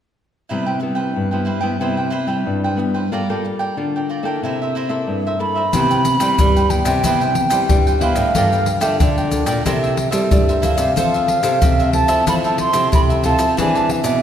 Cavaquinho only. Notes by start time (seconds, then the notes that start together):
0.49 E4 B4 C5 G5
0.66 B4 C5 G5
0.80 muted cavaquinho stroke
0.95 B4 C5 G5
1.31 B4 C5 G5
1.45 E4 B4 C5 G5
1.61 B4 C5 G5
1.81 E4 B4 C5 G5
1.97 B4 C5 G5
2.10 E4 B4 C5 G5
2.28 B4 C5 G5
2.64 B4 C5 G5
2.79 muted cavaquinho stroke
2.94 B4 C5 G5
3.12 F4 A#4 D5 G5
3.30 A#4 D5 G5
3.45 muted cavaquinho stroke
3.59 A#4 D5 G5
3.96 A#4 D5 G5
4.09 F4 A#4 D5 G5
4.25 A#4 D5 G5
4.44 E4 A#4 C5 E5
4.62 A#4 C5 E5
4.75 E4 A#4 C5 E5
4.89 A#4 C5 E5
5.27 A#4 C5 E5
5.40 muted cavaquinho stroke
5.55 A#4 C5 E5
5.75 E4 B4 C5 G5
5.91 B4 C5 G5
6.06 muted cavaquinho stroke
6.20 B4 C5 G5
6.56 B4 C5 G5
6.85 B4 C5 G5
7.05 E4 B4 C5 G5
7.21 B4 C5 G5
7.35 muted cavaquinho stroke
7.50 B4 C5 G5
7.87 B4 C5 G5
8.01 E4 B4 C5 G5
8.17 B4 C5 G5
8.36 F4 A#4 D5 G5
8.53 A#4 D5 G5
8.67 muted cavaquinho stroke
8.81 A#4 D5 G5
9.18 A#4 D5 G5
9.46 A#4 D5 G5
9.66 E4 A#4 C5 E5
9.83 A#4 C5 E5
9.97 muted cavaquinho stroke
10.11 A#4 C5 E5
10.49 A#4 C5 E5
10.62 E4 A#4 C5 E5
10.77 A#4 C5 E5
10.97 F4 A4 C5 E5
11.14 A4 C5 E5
11.28 muted cavaquinho stroke
11.44 A4 C5
11.80 A4 C5 E5
12.08 A4 C5 E5
12.27 F4 A4 C5 E5
12.45 A4 C5 E5
12.58 muted cavaquinho stroke
12.73 A4 C5 E5
13.09 A4 C5 E5
13.24 F4 A4 C5 E5
13.39 A4 C5 E5
13.58 E4 G#4 B4 D5
13.74 G#4 B4 D5
13.89 muted cavaquinho stroke
14.04 G#4 B4 D5